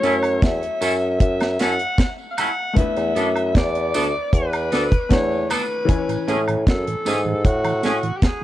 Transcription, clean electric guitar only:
0, 0, Header, 1, 2, 480
1, 0, Start_track
1, 0, Key_signature, 3, "major"
1, 0, Tempo, 780133
1, 1699, Time_signature, 4, 2, 24, 8
1, 5191, End_track
2, 0, Start_track
2, 0, Title_t, "Clean electric guitar"
2, 0, Program_c, 0, 27
2, 19, Note_on_c, 0, 61, 86
2, 25, Note_on_c, 0, 64, 85
2, 28, Note_on_c, 0, 69, 90
2, 83, Note_off_c, 0, 61, 0
2, 85, Note_off_c, 0, 64, 0
2, 87, Note_off_c, 0, 69, 0
2, 498, Note_on_c, 0, 61, 84
2, 504, Note_on_c, 0, 64, 93
2, 507, Note_on_c, 0, 69, 85
2, 562, Note_off_c, 0, 61, 0
2, 565, Note_off_c, 0, 64, 0
2, 567, Note_off_c, 0, 69, 0
2, 982, Note_on_c, 0, 61, 72
2, 987, Note_on_c, 0, 64, 84
2, 989, Note_on_c, 0, 69, 84
2, 1044, Note_off_c, 0, 61, 0
2, 1047, Note_off_c, 0, 64, 0
2, 1048, Note_off_c, 0, 69, 0
2, 1462, Note_on_c, 0, 61, 93
2, 1468, Note_on_c, 0, 64, 86
2, 1472, Note_on_c, 0, 69, 103
2, 1524, Note_off_c, 0, 61, 0
2, 1527, Note_off_c, 0, 64, 0
2, 1529, Note_off_c, 0, 69, 0
2, 1941, Note_on_c, 0, 59, 79
2, 1947, Note_on_c, 0, 62, 91
2, 1951, Note_on_c, 0, 69, 81
2, 2004, Note_off_c, 0, 59, 0
2, 2007, Note_off_c, 0, 62, 0
2, 2009, Note_off_c, 0, 69, 0
2, 2425, Note_on_c, 0, 59, 96
2, 2430, Note_on_c, 0, 62, 91
2, 2434, Note_on_c, 0, 69, 98
2, 2486, Note_off_c, 0, 59, 0
2, 2488, Note_off_c, 0, 62, 0
2, 2490, Note_off_c, 0, 69, 0
2, 2903, Note_on_c, 0, 59, 90
2, 2907, Note_on_c, 0, 62, 85
2, 2910, Note_on_c, 0, 69, 85
2, 2965, Note_off_c, 0, 59, 0
2, 2967, Note_off_c, 0, 62, 0
2, 2968, Note_off_c, 0, 69, 0
2, 3385, Note_on_c, 0, 59, 90
2, 3390, Note_on_c, 0, 62, 99
2, 3394, Note_on_c, 0, 69, 95
2, 3446, Note_off_c, 0, 59, 0
2, 3448, Note_off_c, 0, 62, 0
2, 3450, Note_off_c, 0, 69, 0
2, 3862, Note_on_c, 0, 57, 85
2, 3867, Note_on_c, 0, 61, 88
2, 3871, Note_on_c, 0, 68, 86
2, 3924, Note_off_c, 0, 57, 0
2, 3927, Note_off_c, 0, 61, 0
2, 3929, Note_off_c, 0, 68, 0
2, 4343, Note_on_c, 0, 57, 76
2, 4348, Note_on_c, 0, 61, 82
2, 4353, Note_on_c, 0, 68, 88
2, 4405, Note_off_c, 0, 57, 0
2, 4407, Note_off_c, 0, 61, 0
2, 4410, Note_off_c, 0, 68, 0
2, 4823, Note_on_c, 0, 57, 79
2, 4829, Note_on_c, 0, 61, 81
2, 4833, Note_on_c, 0, 68, 85
2, 4885, Note_off_c, 0, 57, 0
2, 4888, Note_off_c, 0, 61, 0
2, 4890, Note_off_c, 0, 68, 0
2, 5191, End_track
0, 0, End_of_file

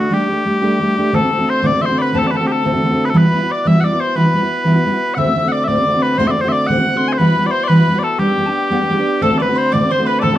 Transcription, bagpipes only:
0, 0, Header, 1, 2, 480
1, 0, Start_track
1, 0, Tempo, 336700
1, 181, Time_signature, 6, 3, 24, 8
1, 14799, End_track
2, 0, Start_track
2, 0, Title_t, "Bagpipes"
2, 0, Program_c, 0, 109
2, 0, Note_on_c, 0, 66, 73
2, 189, Note_off_c, 0, 66, 0
2, 189, Note_on_c, 0, 67, 88
2, 1640, Note_off_c, 0, 67, 0
2, 1640, Note_on_c, 0, 69, 79
2, 2132, Note_off_c, 0, 69, 0
2, 2132, Note_on_c, 0, 72, 91
2, 2372, Note_off_c, 0, 72, 0
2, 2372, Note_on_c, 0, 74, 99
2, 2592, Note_off_c, 0, 74, 0
2, 2592, Note_on_c, 0, 76, 75
2, 2646, Note_off_c, 0, 76, 0
2, 2646, Note_on_c, 0, 72, 75
2, 2825, Note_off_c, 0, 72, 0
2, 2825, Note_on_c, 0, 74, 75
2, 2876, Note_off_c, 0, 74, 0
2, 2876, Note_on_c, 0, 71, 75
2, 3109, Note_off_c, 0, 71, 0
2, 3109, Note_on_c, 0, 69, 85
2, 3234, Note_off_c, 0, 69, 0
2, 3234, Note_on_c, 0, 74, 58
2, 3290, Note_off_c, 0, 74, 0
2, 3290, Note_on_c, 0, 71, 58
2, 3372, Note_off_c, 0, 71, 0
2, 3372, Note_on_c, 0, 69, 72
2, 3522, Note_off_c, 0, 69, 0
2, 3522, Note_on_c, 0, 67, 48
2, 3598, Note_off_c, 0, 67, 0
2, 3598, Note_on_c, 0, 69, 84
2, 4349, Note_off_c, 0, 69, 0
2, 4349, Note_on_c, 0, 71, 78
2, 4411, Note_off_c, 0, 71, 0
2, 4412, Note_on_c, 0, 69, 78
2, 4522, Note_off_c, 0, 69, 0
2, 4522, Note_on_c, 0, 71, 96
2, 5012, Note_off_c, 0, 71, 0
2, 5012, Note_on_c, 0, 74, 82
2, 5239, Note_off_c, 0, 74, 0
2, 5239, Note_on_c, 0, 76, 120
2, 5422, Note_off_c, 0, 76, 0
2, 5422, Note_on_c, 0, 78, 74
2, 5477, Note_off_c, 0, 78, 0
2, 5477, Note_on_c, 0, 74, 74
2, 5704, Note_off_c, 0, 74, 0
2, 5704, Note_on_c, 0, 72, 74
2, 5932, Note_off_c, 0, 72, 0
2, 5932, Note_on_c, 0, 71, 84
2, 7333, Note_off_c, 0, 71, 0
2, 7333, Note_on_c, 0, 78, 88
2, 7380, Note_off_c, 0, 78, 0
2, 7381, Note_on_c, 0, 76, 88
2, 7812, Note_off_c, 0, 76, 0
2, 7812, Note_on_c, 0, 78, 81
2, 7871, Note_off_c, 0, 78, 0
2, 7871, Note_on_c, 0, 74, 81
2, 8045, Note_off_c, 0, 74, 0
2, 8045, Note_on_c, 0, 76, 93
2, 8096, Note_off_c, 0, 76, 0
2, 8096, Note_on_c, 0, 74, 93
2, 8587, Note_off_c, 0, 74, 0
2, 8587, Note_on_c, 0, 71, 75
2, 8811, Note_off_c, 0, 71, 0
2, 8811, Note_on_c, 0, 72, 98
2, 8944, Note_on_c, 0, 76, 81
2, 8945, Note_off_c, 0, 72, 0
2, 8993, Note_off_c, 0, 76, 0
2, 8993, Note_on_c, 0, 74, 81
2, 9137, Note_off_c, 0, 74, 0
2, 9137, Note_on_c, 0, 72, 95
2, 9247, Note_off_c, 0, 72, 0
2, 9247, Note_on_c, 0, 76, 82
2, 9298, Note_off_c, 0, 76, 0
2, 9298, Note_on_c, 0, 74, 82
2, 9505, Note_off_c, 0, 74, 0
2, 9505, Note_on_c, 0, 78, 104
2, 10096, Note_off_c, 0, 78, 0
2, 10096, Note_on_c, 0, 80, 71
2, 10160, Note_off_c, 0, 80, 0
2, 10160, Note_on_c, 0, 72, 71
2, 10236, Note_off_c, 0, 72, 0
2, 10236, Note_on_c, 0, 71, 90
2, 10642, Note_off_c, 0, 71, 0
2, 10642, Note_on_c, 0, 74, 88
2, 10706, Note_off_c, 0, 74, 0
2, 10706, Note_on_c, 0, 72, 88
2, 10885, Note_off_c, 0, 72, 0
2, 10885, Note_on_c, 0, 74, 101
2, 10944, Note_off_c, 0, 74, 0
2, 10944, Note_on_c, 0, 71, 101
2, 11389, Note_off_c, 0, 71, 0
2, 11389, Note_on_c, 0, 74, 71
2, 11452, Note_off_c, 0, 74, 0
2, 11452, Note_on_c, 0, 69, 71
2, 11675, Note_off_c, 0, 69, 0
2, 11675, Note_on_c, 0, 67, 84
2, 13152, Note_off_c, 0, 67, 0
2, 13152, Note_on_c, 0, 69, 75
2, 13370, Note_on_c, 0, 74, 79
2, 13371, Note_off_c, 0, 69, 0
2, 13430, Note_off_c, 0, 74, 0
2, 13430, Note_on_c, 0, 71, 79
2, 13659, Note_off_c, 0, 71, 0
2, 13659, Note_on_c, 0, 72, 91
2, 13870, Note_off_c, 0, 72, 0
2, 13870, Note_on_c, 0, 74, 103
2, 14139, Note_off_c, 0, 74, 0
2, 14139, Note_on_c, 0, 72, 73
2, 14360, Note_off_c, 0, 72, 0
2, 14360, Note_on_c, 0, 71, 81
2, 14530, Note_off_c, 0, 71, 0
2, 14530, Note_on_c, 0, 74, 81
2, 14589, Note_off_c, 0, 74, 0
2, 14589, Note_on_c, 0, 69, 81
2, 14763, Note_off_c, 0, 69, 0
2, 14799, End_track
0, 0, End_of_file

